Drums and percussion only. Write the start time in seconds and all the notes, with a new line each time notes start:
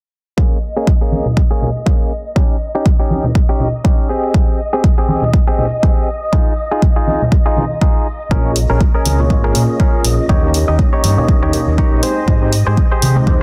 0.38 kick
0.63 tambourine
0.76 tambourine
0.87 kick
1.12 tambourine, high conga
1.26 tambourine, low conga
1.37 kick, tambourine
1.62 tambourine, low conga
1.76 tambourine
1.86 kick
2.11 tambourine
2.26 tambourine
2.36 kick
2.61 tambourine
2.75 tambourine
2.86 kick
3.10 tambourine, high conga
3.24 tambourine, low conga
3.35 kick
3.60 tambourine, low conga
3.73 tambourine
3.85 kick
4.10 tambourine
4.23 tambourine
4.34 kick
4.59 tambourine
4.73 tambourine
4.84 kick
5.08 tambourine, high conga
5.22 tambourine, low conga
5.34 kick
5.58 tambourine, low conga
5.72 tambourine
5.83 kick
6.08 tambourine
6.23 tambourine
6.33 kick
6.57 tambourine
6.71 tambourine
6.82 kick
7.07 tambourine, high conga
7.21 tambourine, low conga
7.32 kick
7.56 tambourine, high conga, low conga
7.71 tambourine
7.81 kick
8.07 tambourine
8.20 tambourine
8.31 kick
8.56 open hi-hat, tambourine
8.70 tambourine
8.81 kick
9.05 open hi-hat, tambourine, high conga
9.20 tambourine, low conga
9.30 kick
9.55 open hi-hat, tambourine, low conga
9.69 tambourine
9.79 kick, tambourine
10.04 open hi-hat, tambourine
10.20 tambourine
10.29 kick
10.54 open hi-hat, tambourine
10.68 tambourine
10.79 kick
11.03 open hi-hat, tambourine, high conga
11.18 tambourine, low conga
11.28 kick, tambourine
11.53 open hi-hat, tambourine, low conga
11.67 tambourine
11.78 kick
12.03 open hi-hat, tambourine
12.17 tambourine
12.28 kick
12.53 open hi-hat, tambourine
12.67 tambourine
12.77 kick
13.02 open hi-hat, tambourine, high conga
13.16 tambourine, low conga
13.27 kick, tambourine